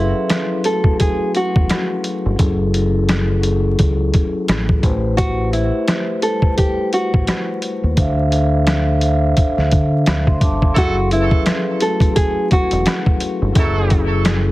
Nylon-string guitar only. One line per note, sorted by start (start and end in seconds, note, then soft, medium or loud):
0.00 0.61 E4 medium
0.65 0.96 A4 medium
1.00 1.31 G#4 medium
1.36 2.36 F#4 medium
5.17 5.49 F#4 loud
5.53 6.19 E4 medium
6.23 6.54 A4 medium
6.58 6.89 G4 medium
6.93 7.94 F#4 medium
10.78 11.09 F#4 loud
11.12 11.78 E4 medium
11.82 12.13 A4 medium
12.16 12.47 G#4 medium
12.53 13.52 F#4 medium